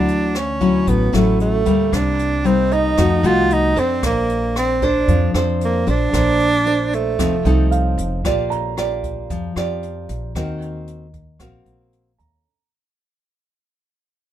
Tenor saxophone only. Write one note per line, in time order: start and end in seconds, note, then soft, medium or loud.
0.00 0.39 D4 medium
0.37 0.90 C#4 medium
0.89 1.14 B3 medium
1.15 1.39 A3 medium
1.41 1.95 A3 medium
1.94 2.47 D4 medium
2.46 2.75 C4 medium
2.73 3.27 D#4 loud
3.26 3.54 F4 medium
3.53 3.81 D#4 medium
3.79 4.04 C4 medium
4.06 4.54 A#3 medium
4.58 4.86 C4 medium
4.84 5.36 D4 medium
5.65 5.91 A#3 medium
5.89 6.96 D4 loud
6.95 7.99 A3 medium